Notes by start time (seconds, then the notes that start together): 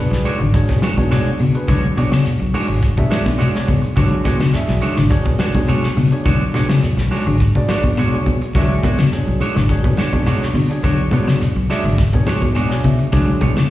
Already playing: D4 F#4
0.00 G#4 B4
0.11 B1, muted clean electric guitar stroke, snare
0.25 G#3 D4 F#4 C#5, closed hi-hat, high conga, claves, shekere
0.39 G#1 D3, muted clean electric guitar stroke
0.54 D4 F#4 G#4 C#5, kick, closed hi-hat, shekere
0.69 B2, muted clean electric guitar stroke, kick, snare, low conga
0.82 G#3 F#4 C#5, muted clean electric guitar stroke, snare, closed hi-hat, high conga, claves, shekere
0.97 B2 D4 F#4 G#4 C#5, muted clean electric guitar stroke, kick, closed hi-hat, high conga
1.11 B2 G#3 D4 F#4 C#5, snare, closed hi-hat, claves, shekere
1.39 B2 C#3, muted clean electric guitar stroke, open hi-hat, shekere
1.54 D4 F#4 G#4 B4, muted clean electric guitar stroke, closed hi-hat
1.68 B1 D3 G#3 D4 F#4 C#5, kick, closed hi-hat, low conga, claves, shekere
1.97 B2 D4 F#4 G#4 C#5, muted clean electric guitar stroke, closed hi-hat, high conga, shekere
2.11 C#3, muted clean electric guitar stroke, snare, closed hi-hat, claves
2.24 muted clean electric guitar stroke, closed hi-hat, shekere
2.40 B1, muted clean electric guitar stroke
2.54 G#3 D4 F#4 G#4 C#5, open hi-hat, high conga, claves, shekere
2.68 G#1, muted clean electric guitar stroke
2.83 kick, closed hi-hat, shekere
2.97 B2 D4 F#4 G#4 E5, muted clean electric guitar stroke, kick, low conga
3.10 G#3 D4 F#4 C#5, snare, closed hi-hat, high conga, claves, shekere
3.25 B2, muted clean electric guitar stroke, kick, snare, high conga
3.38 B2 G#3 D4 F#4 C#5, closed hi-hat, claves, shekere
3.55 D4 F#4 G#4 C#5, snare
3.67 B2 C#3, muted clean electric guitar stroke, kick, closed hi-hat, high conga, shekere
3.82 muted clean electric guitar stroke, closed hi-hat
3.96 B1 D3 G#3 D4 F#4 G#4 C#5, kick, closed hi-hat, low conga, claves, shekere
4.24 B2 G#3 D4 F#4 C#5, kick, snare, closed hi-hat, high conga, shekere
4.39 C#3, muted clean electric guitar stroke, snare, closed hi-hat, claves
4.53 D4 F#4 G#4 E5, muted clean electric guitar stroke, snare, closed hi-hat, shekere
4.68 B1, muted clean electric guitar stroke, snare
4.81 G#3 D4 F#4 C#5, closed hi-hat, high conga, claves, shekere
4.97 G#1 D3, muted clean electric guitar stroke, snare, low conga
5.10 D4 F#4 G#4 C#5, kick, closed hi-hat, shekere
5.25 B2, muted clean electric guitar stroke, kick, low conga
5.39 G#3 D4 F#4 C#5, snare, closed hi-hat, high conga, claves, shekere
5.54 B2 D4 F#4 G#4 C#5, muted clean electric guitar stroke, kick, closed hi-hat, high conga
5.68 B2 G#3 D4 F#4 C#5, closed hi-hat, claves, shekere
5.83 snare
5.97 B2 C#3, muted clean electric guitar stroke, open hi-hat, high conga, shekere
6.11 D4 F#4 G#4 C#5, muted clean electric guitar stroke, closed hi-hat
6.25 B1 D3 G#3 D4 F#4 C#5, kick, closed hi-hat, low conga, claves, shekere
6.54 B2 G#3 D4 F#4 G#4 C#5, snare, closed hi-hat, high conga, shekere
6.69 C#3, muted clean electric guitar stroke, snare, closed hi-hat, claves
6.82 muted clean electric guitar stroke, closed hi-hat, high conga, shekere
6.97 B1, muted clean electric guitar stroke, snare
7.11 G#3 D4 F#4 G#4 C#5, open hi-hat, high conga, claves, shekere
7.27 G#1 D3, muted clean electric guitar stroke
7.40 kick, closed hi-hat, shekere
7.55 B2 D4 F#4 G#4 D5, muted clean electric guitar stroke, kick, low conga
7.68 G#3 D4 F#4 C#5, snare, closed hi-hat, high conga, claves, shekere
7.84 B2, muted clean electric guitar stroke, kick, high conga
7.97 B2 G#3 D4 F#4 C#5, closed hi-hat, claves, shekere
8.12 D4 F#4 G#4 C#5
8.26 B2, muted clean electric guitar stroke, kick, closed hi-hat, high conga, shekere
8.41 muted clean electric guitar stroke, closed hi-hat
8.55 B1 D3 G#3 D4 F#4 G#4 C#5 E5, kick, closed hi-hat, low conga, claves, shekere
8.83 B2 G#3 D4 F#4 C#5, kick, snare, closed hi-hat, high conga, shekere
8.98 C#3, muted clean electric guitar stroke, snare, closed hi-hat, claves
9.12 D4 F#4 G#4 C#5, muted clean electric guitar stroke, closed hi-hat, shekere
9.27 B1, muted clean electric guitar stroke
9.40 G#3 D4 F#4 C#5, closed hi-hat, high conga, claves, shekere
9.55 G#1 D3, muted clean electric guitar stroke, snare, low conga
9.69 D4 F#4 G#4 C#5, kick, closed hi-hat, shekere
9.83 B2, muted clean electric guitar stroke, kick, low conga
9.97 G#3 D4 F#4 C#5, snare, closed hi-hat, high conga, claves, shekere
10.13 B2 D4 F#4 G#4 C#5, muted clean electric guitar stroke, kick, closed hi-hat, high conga
10.26 B2 G#3 D4 F#4 C#5, closed hi-hat, claves, shekere
10.43 snare
10.54 B2 D3, muted clean electric guitar stroke, open hi-hat, shekere
10.70 D4 F#4 G#4 C#5, muted clean electric guitar stroke, closed hi-hat
10.83 B1 D3 D4 F#4 C#5, muted clean electric guitar stroke, kick, closed hi-hat, low conga, claves, shekere
11.11 B2 G#3 D4 F#4 G#4 C#5, closed hi-hat, high conga, shekere
11.28 C#3, muted clean electric guitar stroke, snare, closed hi-hat, claves
11.41 muted clean electric guitar stroke, closed hi-hat, shekere
11.55 B1, muted clean electric guitar stroke
11.69 G#3 D4 F#4 G#4 C#5 E5, snare, open hi-hat, high conga, claves, shekere
11.83 G#1 D3, muted clean electric guitar stroke
11.98 kick, snare, closed hi-hat, shekere
12.13 B2 D4 F#4 G#4 C#5, muted clean electric guitar stroke, kick, low conga
12.26 G#3 D4 F#4 C#5, snare, closed hi-hat, high conga, claves, shekere
12.42 B2, muted clean electric guitar stroke, kick, high conga
12.55 B2 G#3 D4 F#4 C#5 G#5, closed hi-hat, claves, shekere
12.69 D4 F#4 G#4 C#5, snare
12.84 B2 C#3 E5, muted clean electric guitar stroke, kick, closed hi-hat, shekere
12.99 muted clean electric guitar stroke, closed hi-hat
13.12 B1 D3 G#3 D4 F#4 G#4 C#5, muted clean electric guitar stroke, kick, snare, closed hi-hat, low conga, claves, shekere
13.41 B2 G#3 D4 C#5, muted clean electric guitar stroke, kick, closed hi-hat, high conga, shekere
13.57 C#3, muted clean electric guitar stroke, snare, closed hi-hat, high conga, claves